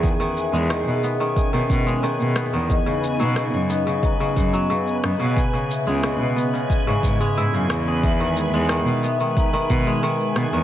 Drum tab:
SH |xxxxxxxxxxxxxxxx|xxxxxxxxxxxxxx-x|xxxxx-xxxxxxxxx-|xxxxxxxxxxxxxxxx|
SD |----r---------r-|----r---------r-|----r---------r-|----r---------r-|
BD |o-------o-o-----|o-------o-o-----|o-------o-o-----|o-------o-o-----|